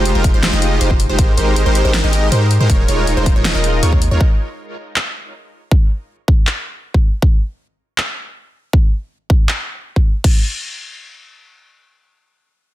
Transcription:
Already playing: F1 G#3 D#4 F4 G4 C5
0.05 closed hi-hat
0.15 F1 G#3 D#4 F4 G4 A#4
0.24 kick, closed hi-hat
0.34 F1 G#3 D#4 F4 G4 C5
0.43 snare, clap, closed hi-hat
0.53 F1 G#3 D#4 F4 G4 D#5
0.62 closed hi-hat
0.81 F1 G#3 D#4 F4 G4 C5, closed hi-hat
0.91 kick
1.00 closed hi-hat
1.09 F1 G#3 D#4 F4 G4 C5
1.19 G#1 G#3 D#4 G4 A#4 C5, kick, closed hi-hat
1.37 G#1 G#3 D#4 G4 A#4 C5, closed hi-hat
1.56 closed hi-hat
1.66 G#1 G#3 D#4 G4 A#4 C5
1.75 closed hi-hat
1.85 G#1 G#3 D#4 G4 A#4 C5
1.94 snare, clap, closed hi-hat
2.04 G#1 G#3 D#4 G4 A#4 D#5
2.13 closed hi-hat
2.32 G#2 G#3 D#4 G4 A#4 C5, closed hi-hat
2.51 closed hi-hat
2.60 G#2 G#3 D#4 G4 A#4 C5
2.70 D#1 G#3 D#4 F4 C#5, kick, closed hi-hat
2.88 D#1 G#3 D#4 F4 A#4 C#5, closed hi-hat
3.07 closed hi-hat
3.17 D#1 G#3 D#4 F4 A#4 C5
3.26 kick, closed hi-hat
3.36 D#1 G#3 D#4 F4 A#4 C#5
3.45 snare, clap, closed hi-hat
3.55 D#1 G#3 D#4 F4 A#4 D#5
3.64 closed hi-hat
3.83 D#2 G#3 D#4 F4 A#4 C#5, closed hi-hat
3.93 kick
4.02 closed hi-hat
4.11 D#2 G#3 D#4 F4 A#4 C#5
4.21 kick
4.96 clap
5.71 kick
6.28 kick
6.47 clap
6.94 kick
7.22 kick
7.98 clap
8.73 kick
9.30 kick
9.49 clap
9.96 kick
10.24 kick, crash

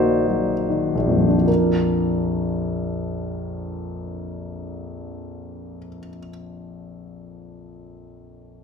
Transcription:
Already playing: A#1 D#3 A#3 D#4 F#4 C5 D5
0.28 F#3
0.70 D#3
0.95 A#1
1.06 F2 A#2
1.17 F3
1.28 D4
1.38 F4
1.47 A#4

